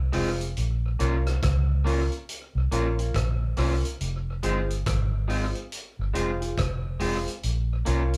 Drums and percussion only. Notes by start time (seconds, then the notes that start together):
0.13 open hi-hat
0.41 closed hi-hat
0.57 closed hi-hat
1.00 closed hi-hat
1.27 cross-stick, closed hi-hat
1.42 kick, cross-stick, closed hi-hat
1.86 open hi-hat
2.12 closed hi-hat
2.29 closed hi-hat
2.72 closed hi-hat
2.99 closed hi-hat
3.14 kick, cross-stick, closed hi-hat
3.57 cross-stick, open hi-hat
3.85 closed hi-hat
4.01 closed hi-hat
4.43 closed hi-hat
4.70 closed hi-hat
4.86 kick, cross-stick, closed hi-hat
5.30 open hi-hat
5.55 closed hi-hat
5.72 closed hi-hat
6.15 closed hi-hat
6.42 closed hi-hat
6.58 kick, cross-stick, closed hi-hat
7.00 open hi-hat
7.28 closed hi-hat
7.43 closed hi-hat
7.86 closed hi-hat
8.13 closed hi-hat